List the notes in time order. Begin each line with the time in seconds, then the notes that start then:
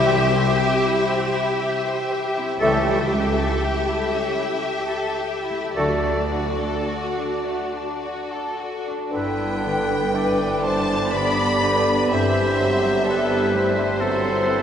Already playing: C2 C3 G3 E4 G4 E5 G5
0.05 C4 G4
0.30 C5
0.34 E4
0.57 G4
0.85 E4 C5
1.08 C4 E5
1.35 E4 G5
1.61 G4 E5
1.86 C5
2.11 G4
2.38 C4 E4
2.60 C#2 C#3 E3 G3 A3 C#4 G4 A4 E5
2.86 G3 E4
3.11 A3 G4
3.37 E4 A4
3.62 G4
3.86 E4 A4
4.12 C#4 E5
4.38 E4 G5
4.62 G4 E5
4.87 A4
4.93 A4
5.18 G4
5.45 E4
5.50 A3
5.74 D2 D3 F#3 A3 F#4 A4 D5
5.78 D3
6.05 A3 D4
6.32 F#4
6.36 D4
6.60 F#4 A4
6.86 F#4
6.93 A4
7.18 D4 D5
7.46 A3 F#5
7.74 D4 A5
8.02 F#4 F#5
8.31 A4 D5
8.60 F#4 A4
8.89 D4
9.10 G1 G2 D3 B3 D4 E4 B4
9.14 G2 B4 G5
9.41 D4
9.63 D3 D4 A4
9.91 D4
10.13 E3 D4 G4 B4 D5
10.39 D4
10.64 B3 C5 A5
10.89 D4
11.12 D3 B3 G4 D5 B5
11.38 D4
11.63 D3 B3 G4 B4
11.87 D4
12.11 G1 G2 E3 C4 G4 A4 C5 E5
12.15 C5
12.36 C4
12.60 F#3 G3
12.85 C4
13.05 G3 B3 E4 A4
13.10 B4
13.31 C4
13.51 G3 A3 C5
13.79 C4
14.01 F#3 G3 C4 E4 A4
14.25 C4
14.48 E3 A4